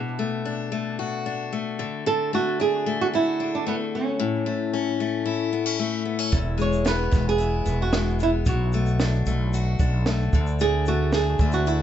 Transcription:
Already playing: steel-string acoustic guitar B2, nylon-string guitar D4
0.19 steel-string acoustic guitar A3
0.45 steel-string acoustic guitar D4
0.72 steel-string acoustic guitar A3
0.99 steel-string acoustic guitar F#4
1.26 steel-string acoustic guitar D4
1.53 steel-string acoustic guitar A3
1.79 steel-string acoustic guitar D3
2.06 steel-string acoustic guitar D3, nylon-string guitar A4
2.33 steel-string acoustic guitar A3, nylon-string guitar F#4
2.60 steel-string acoustic guitar D4, nylon-string guitar G#4
2.86 steel-string acoustic guitar A3
3.01 nylon-string guitar F#4
3.13 nylon-string guitar E4, steel-string acoustic guitar F#4
3.40 steel-string acoustic guitar D4
3.55 nylon-string guitar D4
3.66 steel-string acoustic guitar A3, nylon-string guitar B3
3.95 nylon-string guitar C#4
4.19 steel-string acoustic guitar A2
4.46 steel-string acoustic guitar A3
4.73 steel-string acoustic guitar C#4
5.00 steel-string acoustic guitar A3
5.26 steel-string acoustic guitar E4
5.53 steel-string acoustic guitar B3
5.66 steel-string acoustic guitar C#4
5.79 steel-string acoustic guitar A3
6.05 steel-string acoustic guitar B3
6.19 steel-string acoustic guitar C#4
6.32 fretless electric bass E1, steel-string acoustic guitar E2, nylon-string guitar E4, kick, shaker
6.58 steel-string acoustic guitar G#3, nylon-string guitar C#5, shaker
6.73 shaker
6.85 steel-string acoustic guitar B3, nylon-string guitar B4, snare, shaker
7.11 fretless electric bass E1, steel-string acoustic guitar G#3, kick, snare, shaker
7.29 nylon-string guitar G#4
7.38 steel-string acoustic guitar E4, shaker
7.66 fretless electric bass E1, steel-string acoustic guitar B3, shaker
7.82 nylon-string guitar F#4
7.93 steel-string acoustic guitar G#3, snare, shaker
8.20 steel-string acoustic guitar B3, nylon-string guitar E4, shaker
8.46 fretless electric bass B1, steel-string acoustic guitar B2, nylon-string guitar F#4, kick, shaker
8.72 steel-string acoustic guitar A3, shaker
8.86 shaker
9.00 steel-string acoustic guitar D4, snare, shaker
9.26 fretless electric bass B1, steel-string acoustic guitar A3, shaker
9.53 steel-string acoustic guitar F#4, shaker
9.79 fretless electric bass B1, steel-string acoustic guitar D4, kick, shaker
10.06 steel-string acoustic guitar A3, snare, shaker
10.33 fretless electric bass D2, steel-string acoustic guitar D3, kick, shaker
10.47 shaker
10.60 steel-string acoustic guitar D3, nylon-string guitar G#4, shaker
10.86 steel-string acoustic guitar A3, nylon-string guitar F#4, shaker
11.13 steel-string acoustic guitar D4, nylon-string guitar G#4, snare, shaker
11.39 fretless electric bass D2, steel-string acoustic guitar A3, kick, shaker
11.52 nylon-string guitar F#4, shaker
11.67 nylon-string guitar E4, steel-string acoustic guitar F#4, shaker

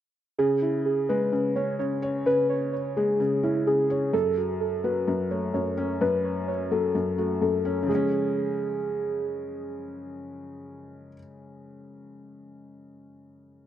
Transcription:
0.38 felt piano C#3, synth keys G#4
0.62 synth keys E4
0.85 synth keys G#4
1.09 felt piano G#3, synth keys B4
1.32 felt piano C#3
1.56 felt piano C#4, synth keys C#5
1.79 felt piano C#3, synth keys C#5
2.02 felt piano C#5
2.26 felt piano C#3, synth keys B4
2.49 synth keys C#5
2.73 synth keys C#5
2.96 felt piano G#3, synth keys G#4
3.20 felt piano C#3
3.43 felt piano C#4, synth keys E4
3.67 felt piano C#3, synth keys G#4
3.90 felt piano C#5
4.13 felt piano F#2, synth keys A4
4.37 synth keys F#4
4.60 synth keys A4
4.84 felt piano F#3, synth keys B4
5.08 felt piano F#2
5.31 felt piano A3, synth keys C#5
5.54 felt piano F#2, synth keys C#5
5.77 felt piano C#4
6.01 felt piano F#2, synth keys B4
6.25 synth keys C#5
6.48 synth keys C#5
6.71 felt piano F#3, synth keys A4
6.95 felt piano F#2
7.18 felt piano A3, synth keys F#4
7.42 felt piano F#2, synth keys A4
7.65 felt piano C#4
7.83 felt piano C#3
7.87 felt piano F3, synth keys G#4
7.91 felt piano G#3
7.95 felt piano C#4

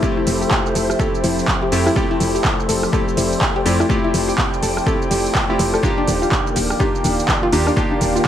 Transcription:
Already playing: ambient pad F3 A4 E5 G5, string machine A4 C5 E5 G5
0.02 synth keys A3 C4 E4 F4 G4, kick, shaker
0.17 synth arpeggio sound E4
0.27 fm bass F1, open hi-hat, shaker
0.41 synth arpeggio sound G4, shaker
0.51 kick, clap, shaker
0.66 shaker
0.75 fm bass F1, synth arpeggio sound A4, open hi-hat, shaker
0.90 cross-stick, shaker
0.99 synth keys A3 C4 E4 F4 G4, synth arpeggio sound A4, kick, shaker
1.15 shaker
1.24 fm bass F1, synth arpeggio sound E4, open hi-hat, shaker
1.39 shaker
1.48 kick, clap, shaker
1.62 synth arpeggio sound G4
1.72 fm bass F2, synth keys A3 C4 E4 F4 G4, open hi-hat, shaker
1.86 synth arpeggio sound E4, cross-stick, shaker
1.96 synth keys A3 C4 E4 F4 G4, string machine D5, kick, shaker
2.11 synth arpeggio sound E4
2.20 fm bass F1, open hi-hat, shaker
2.35 synth arpeggio sound G4, shaker
2.44 kick, clap, shaker
2.60 shaker
2.69 fm bass F1, synth arpeggio sound A4, open hi-hat, shaker
2.83 cross-stick, shaker
2.92 synth keys A3 C4 E4 F4 G4, synth arpeggio sound A4, kick, shaker
3.08 shaker
3.17 fm bass F1, synth arpeggio sound E4, open hi-hat, shaker
3.32 shaker
3.41 kick, clap, shaker
3.56 synth arpeggio sound G4
3.65 fm bass F2, synth keys A3 C4 E4 F4 G4, open hi-hat, shaker
3.80 synth arpeggio sound E4, cross-stick, shaker
3.89 synth keys A3 C4 E4 F4 G4, kick, shaker
4.04 synth arpeggio sound E4
4.14 fm bass F1, open hi-hat, shaker
4.29 synth arpeggio sound G4, shaker
4.38 kick, clap, shaker
4.54 shaker
4.62 fm bass F1, synth arpeggio sound A4, open hi-hat, shaker
4.77 cross-stick, shaker
4.86 synth keys A3 C4 E4 F4 G4, synth arpeggio sound A4, kick, shaker
5.02 shaker
5.11 fm bass F1, synth arpeggio sound G4, open hi-hat, shaker
5.26 shaker
5.35 kick, clap, shaker
5.49 synth keys A3 C4 E4 F4 G4, synth arpeggio sound E4
5.59 fm bass F1, open hi-hat, shaker
5.74 synth arpeggio sound A4, cross-stick, shaker
5.83 ambient pad D#3, synth keys A#3 D4 D#4 F4 G4, string machine A#3 F5, kick, shaker
5.98 synth arpeggio sound D4, ambient pad D5
6.07 fm bass D#1, open hi-hat, shaker
6.22 synth arpeggio sound F4, shaker
6.32 kick, clap, shaker
6.47 shaker
6.56 fm bass D#1, synth arpeggio sound G4, open hi-hat, shaker
6.68 ambient pad F5, cross-stick, shaker
6.79 synth keys A#3 D4 D#4 F4 G4, synth arpeggio sound G4, kick, shaker
6.95 shaker
7.04 fm bass D#1, synth arpeggio sound D4, open hi-hat, shaker
7.19 shaker
7.28 kick, clap, shaker
7.43 synth arpeggio sound F4
7.52 fm bass D#2, synth keys A#3 D4 D#4 F4 G4, open hi-hat, shaker
7.67 synth arpeggio sound D4, cross-stick, shaker
7.76 synth keys A#3 D4 D#4 F4 G4, kick, shaker
7.91 synth arpeggio sound D4
8.01 fm bass D#1, open hi-hat, shaker
8.16 synth arpeggio sound F4, shaker

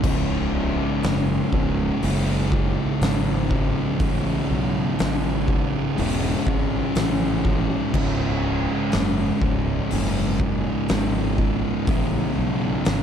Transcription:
0.02 fingered electric bass C#1, distorted electric guitar C#2 G#2 C#3 G#3 E4, kick, crash
1.03 fingered electric bass F#1, snare, open hi-hat
1.53 fingered electric bass C#1, distorted electric guitar C#2 G#2 C#3, kick
2.01 fingered electric bass F#1, distorted electric guitar C#2 G#2 C#3 G#3 E4, open hi-hat
2.52 kick
3.01 fingered electric bass G#1, snare, open hi-hat
3.51 kick
3.99 fingered electric bass A1, distorted electric guitar C#2 G#2 C#3 G#3 E4, kick, open hi-hat
4.51 fingered electric bass B1
4.99 fingered electric bass G#1, snare, open hi-hat
5.48 distorted electric guitar C#2 G#2 C#3, kick
5.96 fingered electric bass E1, distorted electric guitar C#2 G#2 C#3 G#3 E4, open hi-hat
6.47 fingered electric bass G#1, kick
6.95 fingered electric bass A1, snare, open hi-hat
7.45 kick
7.92 fingered electric bass C#1, distorted electric guitar C#2 G#2 C#3 G#3 E4, kick, crash
8.92 fingered electric bass F#1, snare, open hi-hat
9.42 fingered electric bass C#1, distorted electric guitar C#2 G#2 C#3, kick
9.90 fingered electric bass F#1, distorted electric guitar C#2 G#2 C#3 G#3, open hi-hat
9.94 distorted electric guitar E4
10.40 kick
10.88 fingered electric bass G#1, snare, open hi-hat
11.38 kick
11.86 fingered electric bass A1, distorted electric guitar C#2 G#2 C#3 G#3, kick, open hi-hat
11.91 distorted electric guitar E4
12.38 fingered electric bass B1
12.85 fingered electric bass G#1, snare, open hi-hat

